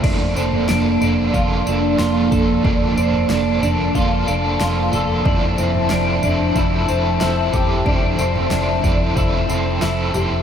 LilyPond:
<<
  \new Staff \with { instrumentName = "Ambient pad" } { \time 4/4 \key bes \lydian \tempo 4 = 92 << { <f a''>1~ | <f a''>1~ | <f a''>1~ | <f a''>1 | } \\ { <bes d''>1~ | <bes d''>1 | <c'' e''>1~ | <c'' e''>1 | } >> }
  \new Staff \with { instrumentName = "Clean electric guitar" } { \time 4/4 \key bes \lydian d'8 c'8 d'8 d'8 f'8 d'8 f'8 a'8 | d'8 c'8 d'8 d'8 f'8 d'8 f'8 a'8 | d'8 c'8 d'8 d'8 e'8 c'8 e'8 g'8 | d'8 c'8 d'8 d'8 e'8 c'8 e'8 g'8 | }
  \new Staff \with { instrumentName = "Overdriven electric guitar" } { \time 4/4 \key bes \lydian <f bes d' a'>8 <bes d' a'>8 <f bes d' a'>8 <bes d' a'>8 <f bes d' a'>8 <bes d' a'>8 <f bes d' a'>8 <bes d' a'>8 | <f bes d' a'>8 <bes d' a'>8 <f bes d' a'>8 <bes d' a'>8 <f bes d' a'>8 <bes d' a'>8 <f bes d' a'>8 <bes d' a'>8 | <f c' e' a'>8 <c' e' a'>8 <f c' e' a'>8 <c' e' a'>8 <f c' e' a'>8 <c' e' a'>8 <f c' e' a'>8 <c' e' a'>8 | <f c' e' a'>8 <c' e' a'>8 <f c' e' a'>8 <c' e' a'>8 <f c' e' a'>8 <c' e' a'>8 <f c' e' a'>8 <c' e' a'>8 | }
  \new Staff \with { instrumentName = "Fingered electric bass" } { \clef bass \time 4/4 \key bes \lydian f,,8 f,,8 f,,8 f,,8 f,,8 f,,8 f,,8 f,,8 | f,,8 f,,8 f,,8 f,,8 f,,8 f,,8 f,,8 f,,8 | f,,8 f,,8 f,,8 f,,8 f,,8 f,,8 f,,8 f,,8 | f,,8 f,,8 f,,8 f,,8 f,,8 f,,8 f,,8 f,,8 | }
  \new DrumStaff \with { instrumentName = "Drums" } \drummode { \time 4/4 <cymc bd tomfh>8 tamb16 tomfh16 <sn tamb>8 <tamb tomfh>8 <bd tamb>8 tamb8 <sn tamb>8 <bd tamb tomfh>8 | <bd tomfh>8 tamb16 tomfh16 <sn tamb>8 <tamb tomfh>8 <bd tamb>8 tamb8 <sn tamb>8 <tamb tomfh>8 | <bd tomfh>8 tamb16 tomfh16 <sn tamb>8 <tamb tomfh>8 <bd tamb>8 tamb8 <sn tamb>8 <bd tamb tomfh>8 | <bd tomfh>8 tamb16 tomfh16 <sn tamb>8 <bd tamb tomfh>8 <bd tamb tomfh>8 tamb8 <sn tamb>8 <tamb tomfh>8 | }
>>